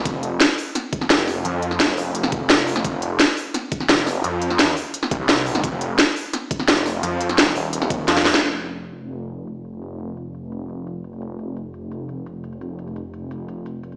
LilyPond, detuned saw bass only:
\new Staff \with { instrumentName = "Detuned saw bass" } { \clef bass \time 4/4 \key c \phrygian \tempo 4 = 172 f,,4 r2 f,,4 | f,4. f,,4. f,,4 | f,,4 r2 f,,4 | f,4. r4 c,4. |
f,,4 r2 f,,4 | f,4. ees,,4. f,4 | f,,1~ | f,,1~ |
f,,1~ | f,,1 | }